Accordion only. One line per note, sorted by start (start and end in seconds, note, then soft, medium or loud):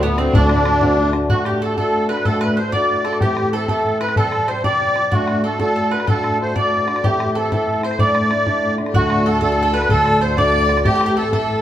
0.03 0.19 B3 medium
0.19 0.35 C4 loud
0.35 1.10 D4 loud
1.30 1.44 F#4 loud
1.45 1.60 G4 medium
1.61 1.75 A4 medium
1.77 2.07 A4 medium
2.09 2.26 B4 medium
2.25 2.42 A4 loud
2.42 2.58 B4 medium
2.57 2.72 C5 medium
2.74 3.18 D5 loud
3.20 3.50 G4 loud
3.53 3.67 A4 medium
3.69 3.98 A4 medium
4.00 4.15 B4 medium
4.17 4.49 A4 loud
4.48 4.63 C5 medium
4.65 5.14 D5 loud
5.13 5.42 F#4 medium
5.44 5.59 A4 medium
5.60 5.93 A4 loud
5.93 6.09 B4 medium
6.09 6.38 A4 loud
6.42 6.56 C5 medium
6.57 7.06 D5 medium
7.04 7.36 G4 medium
7.37 7.51 A4 medium
7.53 7.82 A4 medium
7.84 8.00 C5 medium
8.00 8.75 D5 loud
8.95 9.27 F#4 loud
9.26 9.41 A4 medium
9.42 9.72 A4 loud
9.75 9.91 B4 medium
9.91 10.23 A4 loud
10.22 10.38 C5 medium
10.37 10.87 D5 loud
10.85 11.15 G4 loud
11.17 11.30 A4 medium
11.32 11.62 A4 medium